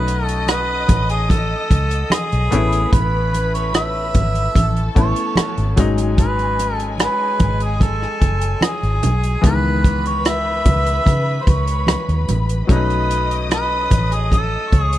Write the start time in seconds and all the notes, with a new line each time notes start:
Already playing: B1 A3 C#4 D#4 F#4 B4 D#5 D#6
0.08 closed hi-hat
0.24 A4
0.28 closed hi-hat
0.47 B4, cross-stick, closed hi-hat, muted conga
0.88 A1, kick, closed hi-hat, high conga, low conga
1.09 G#4, closed hi-hat
1.29 A4, kick, closed hi-hat, muted conga, high conga
1.70 C#2, kick, closed hi-hat, muted conga, high conga
1.91 closed hi-hat
2.10 G#4, cross-stick, closed hi-hat, muted conga, high conga
2.32 B1, closed hi-hat
2.51 A1 A3 B3 C#4 E4 B4 B5, closed hi-hat, muted conga, low conga
2.72 closed hi-hat
2.93 A1 B4, kick, closed hi-hat, muted conga, low conga
3.34 closed hi-hat, muted conga
3.54 C#5, closed hi-hat
3.73 E5, cross-stick, closed hi-hat, muted conga
4.14 G#1, kick, closed hi-hat, muted conga, high conga, low conga
4.35 closed hi-hat
4.55 A1 A4 A5, kick, closed hi-hat, muted conga, high conga
4.76 closed hi-hat
4.95 A1 A3 B3 C#4 E4 C#5, kick, closed hi-hat, high conga
5.16 closed hi-hat
5.36 muted fingered electric bass stroke, cross-stick, closed hi-hat, muted conga, high conga
5.57 G#1, closed hi-hat
5.76 G#1 F#3 G#3 C#4 D#4 G#5, kick, closed hi-hat, low conga
5.98 closed hi-hat
6.18 B4, kick, closed hi-hat, low conga
6.39 closed hi-hat
6.59 closed hi-hat, muted conga
6.75 A4
6.80 closed hi-hat
6.98 B4, cross-stick, closed hi-hat, muted conga
7.39 G#1, kick, closed hi-hat, muted conga, high conga, low conga
7.60 G#4, closed hi-hat
7.80 A4, kick, closed hi-hat, high conga
8.02 cross-stick
8.21 F#1, kick, closed hi-hat, muted conga, high conga
8.41 closed hi-hat
8.61 G#4, cross-stick, closed hi-hat, muted conga, high conga
8.83 G#1, closed hi-hat
9.03 B1, closed hi-hat, muted conga, low conga
9.23 closed hi-hat
9.42 C#2 D#3 E3 G#3 B3 B4 B5, kick, closed hi-hat, low conga
9.46 B4
9.84 kick, closed hi-hat, muted conga
10.05 C#5, closed hi-hat
10.25 E5, cross-stick, closed hi-hat
10.65 C#2, kick, closed hi-hat, muted conga, high conga, low conga
10.86 closed hi-hat
11.06 C#3, kick, closed hi-hat, high conga
11.42 C5
11.47 C#2 C#5, kick, closed hi-hat, high conga
11.67 closed hi-hat
11.87 cross-stick, closed hi-hat, muted conga, high conga
12.09 D#2, closed hi-hat
12.28 A1, closed hi-hat, muted conga, low conga
12.49 closed hi-hat
12.67 B1 F#3 A3 C#4 D#5 D#6, kick, closed hi-hat, low conga
12.71 D#4 B4
12.90 closed hi-hat
13.10 closed hi-hat
13.31 closed hi-hat
13.49 B4, cross-stick, closed hi-hat, muted conga
13.91 A1, kick, closed hi-hat, high conga, low conga
14.12 G#4, closed hi-hat
14.32 A4, kick, closed hi-hat, muted conga, high conga
14.72 C#2 C#5 C#6, kick, closed hi-hat, high conga
14.81 G#4
14.92 closed hi-hat